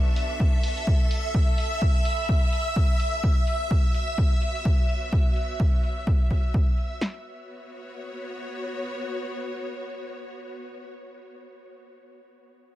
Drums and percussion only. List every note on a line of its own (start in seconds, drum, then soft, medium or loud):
0.16 open hi-hat loud
0.40 kick loud
0.63 open hi-hat loud
0.77 open hi-hat medium
0.87 kick loud
1.11 open hi-hat loud
1.34 kick loud
1.58 open hi-hat loud
1.82 kick loud
2.05 open hi-hat loud
2.29 kick loud
2.53 open hi-hat medium
2.76 kick loud
3.00 open hi-hat loud
3.23 kick loud
3.47 open hi-hat medium
3.71 kick loud
3.94 open hi-hat loud
4.18 kick loud
4.42 open hi-hat medium
4.55 open hi-hat medium
4.65 kick loud
4.89 open hi-hat medium
5.13 kick loud
5.36 open hi-hat medium
5.60 kick loud
5.83 open hi-hat loud
6.07 kick loud
6.31 kick medium
6.31 open hi-hat medium
6.54 kick loud
6.78 open hi-hat medium
7.01 snare medium